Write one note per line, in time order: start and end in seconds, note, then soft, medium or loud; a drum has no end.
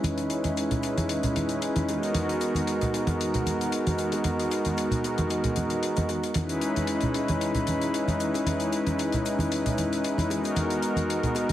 0.00 1.85 G#3 medium
0.00 1.85 C#4 medium
0.00 1.85 D#4 medium
0.00 1.85 E4 medium
0.00 1.86 B4 medium
0.00 high conga medium
0.00 cabasa soft
0.04 closed hi-hat medium
0.18 closed hi-hat soft
0.30 closed hi-hat medium
0.30 cabasa medium
0.44 closed hi-hat soft
0.44 high conga medium
0.44 cabasa soft
0.57 closed hi-hat medium
0.57 cabasa soft
0.71 closed hi-hat soft
0.71 low conga medium
0.71 cabasa soft
0.83 closed hi-hat medium
0.83 cabasa medium
0.97 closed hi-hat medium
0.97 high conga medium
0.97 cabasa soft
1.09 closed hi-hat medium
1.09 high bongo soft
1.09 cabasa soft
1.23 closed hi-hat medium
1.23 low conga medium
1.23 cabasa soft
1.36 closed hi-hat medium
1.36 high conga medium
1.36 cabasa medium
1.49 closed hi-hat soft
1.49 cabasa soft
1.62 closed hi-hat medium
1.62 cabasa soft
1.76 closed hi-hat medium
1.76 high conga medium
1.76 cabasa soft
1.87 6.06 G#3 medium
1.87 6.06 B3 medium
1.87 6.06 D#4 medium
1.87 6.07 F#4 medium
1.87 6.07 A#4 medium
1.87 closed hi-hat medium
1.87 high bongo medium
1.87 cabasa medium
2.03 closed hi-hat soft
2.03 cabasa soft
2.15 closed hi-hat medium
2.15 high conga medium
2.15 cabasa soft
2.29 closed hi-hat medium
2.41 closed hi-hat medium
2.41 cabasa medium
2.55 closed hi-hat medium
2.55 high conga medium
2.55 cabasa soft
2.67 closed hi-hat medium
2.67 cabasa soft
2.81 closed hi-hat soft
2.81 low conga medium
2.81 cabasa soft
2.94 closed hi-hat medium
2.94 high bongo medium
2.94 cabasa medium
3.07 closed hi-hat soft
3.07 high conga medium
3.07 cabasa soft
3.20 closed hi-hat medium
3.20 cabasa soft
3.34 closed hi-hat soft
3.34 low conga medium
3.34 cabasa soft
3.46 closed hi-hat medium
3.46 high conga medium
3.46 cabasa medium
3.61 closed hi-hat medium
3.61 cabasa soft
3.72 closed hi-hat medium
3.72 cabasa soft
3.86 closed hi-hat medium
3.86 high conga medium
3.86 cabasa soft
3.98 closed hi-hat medium
3.98 cabasa medium
4.12 closed hi-hat soft
4.12 high bongo medium
4.12 cabasa soft
4.24 closed hi-hat medium
4.24 high conga medium
4.24 cabasa soft
4.39 closed hi-hat soft
4.51 closed hi-hat medium
4.51 cabasa medium
4.65 closed hi-hat soft
4.65 high conga medium
4.65 cabasa soft
4.77 closed hi-hat medium
4.77 cabasa soft
4.91 closed hi-hat soft
4.91 low conga medium
4.91 cabasa soft
5.04 closed hi-hat medium
5.04 high bongo medium
5.04 cabasa medium
5.18 closed hi-hat medium
5.18 high conga medium
5.18 cabasa soft
5.30 closed hi-hat medium
5.30 high bongo soft
5.30 cabasa soft
5.44 closed hi-hat medium
5.44 low conga medium
5.44 cabasa soft
5.56 closed hi-hat medium
5.56 high conga medium
5.56 cabasa medium
5.70 closed hi-hat soft
5.70 cabasa soft
5.83 closed hi-hat medium
5.83 cabasa soft
5.96 closed hi-hat soft
5.96 high conga medium
5.96 cabasa soft
6.09 closed hi-hat soft
6.09 high bongo medium
6.09 cabasa medium
6.23 closed hi-hat medium
6.23 cabasa soft
6.34 10.27 G#3 medium
6.34 10.27 C#4 medium
6.34 10.27 D#4 medium
6.34 10.28 E4 medium
6.34 10.28 B4 medium
6.34 closed hi-hat medium
6.34 high conga medium
6.34 cabasa soft
6.49 closed hi-hat soft
6.61 closed hi-hat medium
6.61 cabasa medium
6.76 closed hi-hat soft
6.76 high conga medium
6.76 cabasa soft
6.87 closed hi-hat medium
6.87 cabasa soft
7.01 closed hi-hat soft
7.01 low conga medium
7.01 cabasa soft
7.14 closed hi-hat medium
7.14 high bongo soft
7.14 cabasa medium
7.28 closed hi-hat soft
7.28 high conga medium
7.28 cabasa soft
7.41 closed hi-hat medium
7.41 cabasa soft
7.55 closed hi-hat soft
7.55 low conga medium
7.55 cabasa soft
7.67 closed hi-hat medium
7.67 high conga medium
7.67 cabasa medium
7.82 closed hi-hat soft
7.82 cabasa soft
7.94 closed hi-hat medium
7.94 cabasa soft
8.08 closed hi-hat soft
8.08 high conga medium
8.08 cabasa soft
8.20 closed hi-hat medium
8.20 cabasa medium
8.34 closed hi-hat soft
8.34 high bongo medium
8.34 cabasa soft
8.46 closed hi-hat medium
8.46 high conga medium
8.46 cabasa soft
8.60 closed hi-hat soft
8.72 closed hi-hat medium
8.72 cabasa medium
8.87 closed hi-hat soft
8.87 high conga medium
8.87 cabasa soft
8.99 closed hi-hat medium
8.99 cabasa soft
9.12 closed hi-hat medium
9.12 low conga medium
9.12 cabasa soft
9.26 closed hi-hat medium
9.26 cabasa medium
9.39 closed hi-hat soft
9.39 high conga medium
9.39 cabasa soft
9.51 closed hi-hat medium
9.51 high bongo soft
9.51 cabasa soft
9.66 closed hi-hat soft
9.66 low conga medium
9.66 cabasa soft
9.78 closed hi-hat medium
9.78 high conga medium
9.78 cabasa medium
9.92 closed hi-hat soft
9.92 cabasa soft
10.04 closed hi-hat medium
10.04 cabasa soft
10.18 closed hi-hat soft
10.18 high conga medium
10.18 cabasa soft
10.30 11.53 G#3 medium
10.30 11.53 B3 medium
10.30 11.53 D#4 medium
10.30 11.53 F#4 medium
10.30 11.53 A#4 medium
10.30 closed hi-hat soft
10.30 high bongo medium
10.30 cabasa medium
10.44 closed hi-hat soft
10.44 cabasa soft
10.56 closed hi-hat medium
10.56 high conga medium
10.56 cabasa medium
10.70 closed hi-hat medium
10.82 closed hi-hat medium
10.82 cabasa medium
10.96 closed hi-hat soft
10.96 high conga medium
10.96 cabasa soft
11.10 closed hi-hat medium
11.10 cabasa medium
11.23 closed hi-hat soft
11.23 low conga medium
11.23 cabasa soft
11.35 closed hi-hat medium
11.35 high bongo medium
11.35 cabasa loud
11.49 closed hi-hat soft
11.49 high conga medium
11.49 cabasa soft